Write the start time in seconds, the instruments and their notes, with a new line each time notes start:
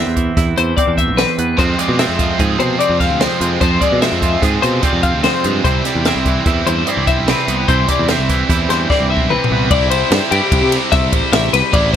Already playing: clean electric guitar E2 B3 C4 E4 E5
0.07 picked electric bass E2
0.16 clean electric guitar E3, kick, closed hi-hat
0.37 picked electric bass E2, clean electric guitar E4, kick, snare, closed hi-hat
0.57 picked electric bass E2, clean electric guitar E2 C5, closed hi-hat
0.77 clean electric guitar C4 D5, kick, closed hi-hat
0.87 picked electric bass E2
0.98 clean electric guitar E5, kick, closed hi-hat
1.08 picked electric bass B1
1.17 clean electric guitar E2 C4 B4, snare, closed hi-hat
1.38 picked electric bass E2, clean electric guitar B3, closed hi-hat
1.57 picked electric bass F2, clean electric guitar F2 C4 C5, overdriven electric guitar F3 G#3 C4 F4, kick, closed hi-hat
1.78 clean electric guitar G#3 D5, overdriven electric guitar G#3 C4 F4, closed hi-hat
1.89 picked electric bass B2
1.98 overdriven electric guitar F3 G#3 C4 F4, clean electric guitar C4 E5, snare, closed hi-hat
2.09 picked electric bass F2
2.18 clean electric guitar F3, overdriven electric guitar G#3 C4 F4, kick, closed hi-hat
2.38 picked electric bass G#2, overdriven electric guitar F3 G#3 C4 F4, clean electric guitar G#4, kick, closed hi-hat
2.59 picked electric bass B2, clean electric guitar C3 C5, overdriven electric guitar F3 G#3 C4 F4, closed hi-hat
2.79 overdriven electric guitar F3 G#3 C4 F4, clean electric guitar C4 D5, closed hi-hat
2.89 picked electric bass F2
2.99 overdriven electric guitar G#3 C4 F4, clean electric guitar F5, kick, snare, closed hi-hat
3.10 picked electric bass D2
3.20 clean electric guitar F2 C4 C5, overdriven electric guitar F3 G#3 C4 F4, snare, closed hi-hat
3.41 picked electric bass F2, clean electric guitar G#3, overdriven electric guitar G#3 C4 F4, closed hi-hat
3.61 clean electric guitar F2 C4 C5, picked electric bass F2, overdriven electric guitar F3 G#3 C4 F4, kick, closed hi-hat
3.81 clean electric guitar G#3 D5, overdriven electric guitar G#3 C4 F4, kick, closed hi-hat
3.92 picked electric bass B2
4.01 overdriven electric guitar F3 G#3 C4 F4, clean electric guitar C4 E5, snare, closed hi-hat
4.12 picked electric bass F2
4.21 clean electric guitar F3, overdriven electric guitar G#3 C4 F4, kick, closed hi-hat
4.41 picked electric bass G#2, overdriven electric guitar F3 G#3 C4 F4, clean electric guitar G#4, kick, closed hi-hat
4.61 picked electric bass B2, clean electric guitar C3 C5, overdriven electric guitar F3 G#3 C4 F4, closed hi-hat
4.82 overdriven electric guitar F3 G#3 C4 F4, clean electric guitar C4 D5, kick, closed hi-hat
4.93 picked electric bass F2
5.02 overdriven electric guitar G#3 C4 F4, clean electric guitar F5, kick, closed hi-hat
5.14 picked electric bass D2
5.23 clean electric guitar F2 C4 C5, overdriven electric guitar F3 G#3 C4 F4, snare, closed hi-hat
5.44 picked electric bass G2, clean electric guitar G#3, overdriven electric guitar G#3 C4 F4, closed hi-hat
5.64 picked electric bass C2, overdriven electric guitar C3 E3 G3 C4 E4, clean electric guitar C3 C4 C5, kick, closed hi-hat
5.85 overdriven electric guitar G3 C4 E4, clean electric guitar D5, snare, closed hi-hat
5.95 picked electric bass E2
6.05 overdriven electric guitar C3 E3 G3 C4 E4, clean electric guitar C4 E5, snare, closed hi-hat
6.16 picked electric bass C2
6.26 clean electric guitar E3, overdriven electric guitar G3 C4 E4, kick, closed hi-hat
6.46 picked electric bass E2, overdriven electric guitar E3 G3 C4 E4, clean electric guitar E4, kick, closed hi-hat
6.66 picked electric bass E2, clean electric guitar G2 C5, overdriven electric guitar C3 E3 G3 C4 E4, closed hi-hat
6.87 overdriven electric guitar E3 G3 C4, clean electric guitar C4 D5, closed hi-hat
6.91 overdriven electric guitar E4
6.97 picked electric bass C2
7.07 overdriven electric guitar G3 C4 E4, clean electric guitar E5, kick, closed hi-hat
7.18 picked electric bass B1
7.27 overdriven electric guitar C3 E3 G3 C4 E4, clean electric guitar C3 C4 B4, snare, closed hi-hat
7.48 picked electric bass C2, overdriven electric guitar G3 C4 E4, clean electric guitar B3, closed hi-hat
7.68 picked electric bass C2, overdriven electric guitar C3 E3 G3 C4 E4, clean electric guitar C3 C4 C5, kick, closed hi-hat
7.88 overdriven electric guitar G3 C4 E4, clean electric guitar D5, kick, closed hi-hat
7.99 picked electric bass E2
8.08 overdriven electric guitar C3 E3 G3 C4 E4, clean electric guitar C4 E5, snare, closed hi-hat
8.19 picked electric bass C2
8.29 clean electric guitar E3, overdriven electric guitar G3 C4 E4, kick, closed hi-hat
8.49 picked electric bass E2, overdriven electric guitar E3 G3 C4 E4, clean electric guitar E4, kick, snare, closed hi-hat
8.69 picked electric bass E2, clean electric guitar G2 C5, overdriven electric guitar C3 E3 G3 C4 E4, snare, closed hi-hat
8.89 overdriven electric guitar E3 G3 C4 E4, clean electric guitar C4 D5, kick, snare
9.00 picked electric bass C2
9.10 overdriven electric guitar G3 C4 E4, clean electric guitar E5
9.17 picked electric bass B1, kick
9.30 clean electric guitar C3 C4 B4, overdriven electric guitar C3 E3 G3 C4 E4, mid tom
9.44 floor tom
9.51 picked electric bass C2, overdriven electric guitar G3 C4 E4, clean electric guitar B3
9.71 picked electric bass C2, overdriven electric guitar C3 G3 C4, clean electric guitar D5, kick, ride
9.75 overdriven electric guitar E4
9.90 clean electric guitar C5, ride
10.11 picked electric bass G2, snare, ride
10.31 picked electric bass G2, overdriven electric guitar C3 G3 C4 E4, clean electric guitar G4, ride
10.52 picked electric bass C2, kick, ride
10.62 picked electric bass C3
10.72 snare, ride
10.92 picked electric bass C2, clean electric guitar E5, kick, snare, ride
11.12 picked electric bass A1, clean electric guitar C5, kick, ride
11.32 picked electric bass A1, clean electric guitar E5, snare, ride
11.53 picked electric bass C2, clean electric guitar B4, snare, ride
11.72 picked electric bass A1, overdriven electric guitar C3 G3 C4 E4, clean electric guitar D5, kick, ride